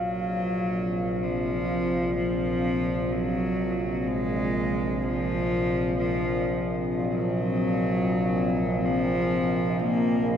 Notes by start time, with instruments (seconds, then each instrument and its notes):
Already playing: synth drone A#1, cello F#3, ambient pad C4 F5, synth texture D#5
0.33 ambient pad A#4
1.22 cello F3
2.17 cello F3
3.11 cello F#3
4.08 cello G#3
5.03 cello F3
5.98 cello F3
6.94 cello F#3
8.85 cello F3
9.80 cello A#3